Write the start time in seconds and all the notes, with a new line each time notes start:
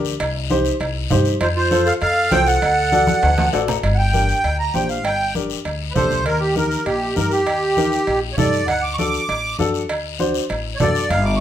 Already playing: D2 D4 G4 A#4
0.05 short guiro
0.20 C2, cowbell, high conga, long guiro
0.50 D#4 G4 C5, high conga, short guiro
0.65 short guiro
0.80 C2, cowbell, high conga, long guiro
1.10 G2 D#4 G4 C5, high conga, low conga, short guiro
1.25 short guiro
1.41 F2 F4 C5, cowbell, high conga, long guiro
1.56 F4 C5
1.71 F4 A4 C5, high conga, short guiro
1.86 A4 F5, short guiro
2.01 F2 A4 F5, cowbell, high conga, long guiro
2.31 C2 F4 A4 C5 G5, high conga, low timbale, short guiro
2.47 A4 F#5, short guiro
2.62 D2, cowbell, high conga, long guiro
2.92 F#4 A4 D5, high conga, short guiro
3.07 D5, high conga, short guiro
3.23 D2 F#5, cowbell, high timbale, long guiro
3.38 A5, high conga, low timbale
3.53 A1 F#4 A4 D5 F#5, low timbale, short guiro
3.68 A#5, low conga, low timbale, short guiro
3.83 G1, cowbell, high conga, long guiro
3.94 F#5
3.99 G5
4.13 D4 G4 A#4, high conga, short guiro
4.29 short guiro
4.44 D2, cowbell, high conga, long guiro
4.59 A#5
4.74 A#1 D4 G4 C5 G5, high conga, short guiro
4.89 F5, short guiro
5.04 G1 G5, cowbell, high conga, long guiro
5.34 D4 G4 A#4, high conga, short guiro
5.50 short guiro
5.65 D2, cowbell, high conga, long guiro
5.91 B4
5.95 A#1 D4 G4 A4 C5, high conga, low conga, short guiro
6.11 low conga, short guiro
6.26 D#2 A#4, cowbell, high conga, long guiro
6.40 G4
6.55 D#4 G4 A#4, high conga, short guiro
6.71 short guiro
6.86 A#1 G4, cowbell, high conga, long guiro
7.16 G2 D#4 G4 A#4, high conga, short guiro
7.31 G4, short guiro
7.46 D#2, cowbell, high conga, long guiro
7.76 D#4 G4 A#4, high conga, short guiro
7.92 short guiro
8.07 A#1, cowbell, high conga, long guiro
8.33 C#5
8.37 G2 D#4 G4 A4 D5, high conga, low conga, short guiro
8.53 short guiro
8.68 D2 F#5, cowbell, high conga, long guiro
8.83 D6
8.93 C#6
8.98 D4 F#4 A4 D6, high conga, short guiro
9.13 short guiro
9.29 A1, cowbell, high conga, long guiro
9.59 F#2 D4 F#4 A4, high conga, short guiro
9.74 short guiro
9.89 D2, cowbell, high conga, long guiro
10.19 D4 F#4 C5, high conga, short guiro
10.34 short guiro
10.49 A1, cowbell, high conga, long guiro
10.75 C#5
10.80 F#2 D4 F#4 A4 D5, high conga, low conga, low timbale, short guiro
10.95 short guiro
11.10 G1 F5, cowbell, high conga, long guiro
11.25 D6
11.36 C#6